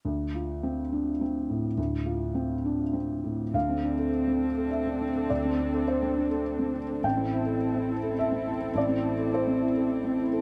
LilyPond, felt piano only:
\new Staff \with { instrumentName = "Felt piano" } { \time 3/4 \key d \minor \tempo 4 = 104 << { r2. | r2. | f''2 e''4 | d''4 c''4. r8 |
g''2 e''4 | d''4 c''4. r8 | } \\ { d,8 f'8 c'8 d'8 c'8 a,8 | d,8 f'8 c'8 d'8 c'8 a,8 | d,16 c'16 d'16 a'8 c'16 d'16 a'8 c'16 d'16 a'16 | d,16 c'16 d'16 a'8 c'16 d'16 a'8 c'16 d'16 a'16 |
a,,16 c'16 e'16 a'8 c'16 e'16 a'8 c'16 e'16 a'16 | a,,16 c'16 e'16 a'8 c'16 e'16 a'8 c'16 e'16 a'16 | } >> }